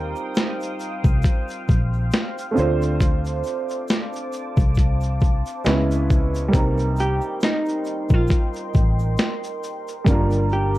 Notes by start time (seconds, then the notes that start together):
Already playing: D#2 G3 C4 D#4 F4 A#4 C5 F5 G5 D#6
0.16 shaker
0.35 snare, closed hi-hat, shaker
0.38 shaker
0.60 shaker
0.63 shaker
0.79 F6, shaker
1.04 C2, kick, shaker
1.22 kick, closed hi-hat, shaker
1.26 shaker
1.48 shaker
1.50 shaker
1.68 A#1, kick, shaker
1.70 shaker
1.93 shaker
2.11 closed hi-hat, shaker
2.13 snare, shaker
2.38 shaker
2.51 A3 C4
2.55 D2 D4 F4 A5 D6, shaker
2.59 C5
2.81 shaker
3.00 kick, closed hi-hat, shaker
3.02 shaker
3.25 shaker
3.26 shaker
3.43 shaker
3.46 shaker
3.69 shaker
3.71 shaker
3.88 snare, closed hi-hat, shaker
3.91 shaker
4.13 shaker
4.16 shaker
4.32 shaker
4.57 C2, kick, shaker
4.60 shaker
4.75 kick, closed hi-hat, shaker
4.79 shaker
5.01 shaker
5.03 shaker
5.20 kick, shaker
5.23 shaker
5.46 shaker
5.64 G#3 B3, closed hi-hat, shaker
5.66 C#2 C#4 E4 B4, snare, shaker
5.91 shaker
6.10 kick, shaker
6.34 shaker
6.48 G3 A#3
6.53 C2 C4 D#4 A#4 D#5 G5 C6, kick, closed hi-hat, shaker
6.57 A#4
6.78 shaker
6.79 shaker
6.96 shaker
6.99 G4, shaker
7.21 shaker
7.40 snare, closed hi-hat, shaker
7.44 D#4, shaker
7.66 shaker
7.69 shaker
7.84 shaker
7.86 shaker
8.09 A#1, kick, shaker
8.14 F4
8.27 kick, closed hi-hat, shaker
8.31 shaker
8.53 shaker
8.56 shaker
8.74 A1, kick, shaker
8.76 shaker
8.99 shaker
9.17 closed hi-hat, shaker
9.19 snare, shaker
9.44 shaker
9.63 shaker
9.87 shaker
10.04 G1 G3 A#3 F5 G5 D6, kick, closed hi-hat, shaker
10.08 D4 F4 A#4
10.31 shaker
10.32 shaker
10.49 shaker
10.52 G4, shaker
10.75 shaker